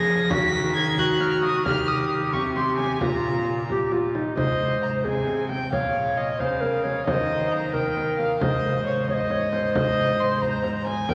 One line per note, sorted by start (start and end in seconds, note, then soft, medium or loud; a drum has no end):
0.00 0.33 F3 medium
0.00 0.32 G#4 medium
0.00 0.31 A#6 loud
0.09 frame drum soft
0.30 1.66 D#3 loud
0.30 0.71 F#4 medium
0.30 0.75 B6 loud
0.30 frame drum medium
0.76 1.01 G#6 loud
0.98 1.64 F#4 medium
0.98 1.22 F#6 loud
0.98 frame drum medium
1.20 1.43 F6 loud
1.20 frame drum soft
1.43 1.65 D#6 loud
1.43 frame drum soft
1.65 2.35 D#3 medium
1.65 2.99 G4 medium
1.65 1.90 F6 loud
1.65 frame drum medium
1.88 2.32 D#6 loud
2.33 3.01 C3 medium
2.33 2.41 C#6 medium
2.33 frame drum medium
2.56 2.77 C6 medium
2.56 frame drum medium
2.78 3.01 G#5 medium
2.78 frame drum medium
3.01 4.16 A#2 medium
3.01 3.64 F4 medium
3.01 3.68 A#5 medium
3.01 frame drum medium
3.69 3.94 G4 medium
3.69 frame drum soft
3.92 4.17 F4 medium
3.92 frame drum soft
4.15 4.36 D#4 medium
4.15 frame drum soft
4.37 5.07 G#2 medium
4.37 5.06 C5 medium
4.37 4.79 D#5 medium
4.37 frame drum medium
4.83 4.91 A#5 medium
5.04 5.73 C3 medium
5.04 5.43 G#4 medium
5.04 5.50 G#5 medium
5.04 frame drum soft
5.27 frame drum soft
5.49 5.72 G5 medium
5.49 frame drum soft
5.72 6.42 A#2 medium
5.72 6.41 C#5 medium
5.72 6.19 F5 medium
5.72 frame drum medium
6.17 6.41 D#5 medium
6.39 7.07 C#3 medium
6.39 6.62 C5 medium
6.39 7.06 F5 medium
6.39 frame drum medium
6.61 6.85 A#4 medium
6.61 frame drum soft
6.84 7.05 C#5 medium
6.84 frame drum soft
7.06 8.39 D#3 medium
7.06 7.11 C#5 medium
7.06 7.53 D#5 loud
7.06 frame drum medium
7.10 7.75 C5 medium
7.52 7.74 A#5 medium
7.73 8.43 A#4 medium
7.73 8.18 G5 medium
7.73 frame drum soft
7.97 frame drum soft
8.19 8.40 F5 medium
8.19 frame drum soft
8.41 11.05 G#2 medium
8.41 9.08 C5 medium
8.41 8.85 D#5 medium
8.41 frame drum medium
8.86 9.07 C#5 medium
9.08 9.15 C#5 medium
9.08 9.73 D#5 medium
9.08 frame drum soft
9.14 9.32 C5 medium
9.30 9.51 C#5 medium
9.30 frame drum soft
9.51 10.78 C5 medium
9.51 frame drum soft
9.75 10.22 D#5 loud
9.75 frame drum medium
10.20 10.43 C6 medium
10.41 10.86 A#5 medium
10.41 frame drum soft
10.64 frame drum soft
10.87 11.11 G#5 medium
10.87 frame drum soft
11.09 11.14 D#3 medium
11.09 11.14 A#4 medium
11.09 11.14 G5 loud
11.09 frame drum medium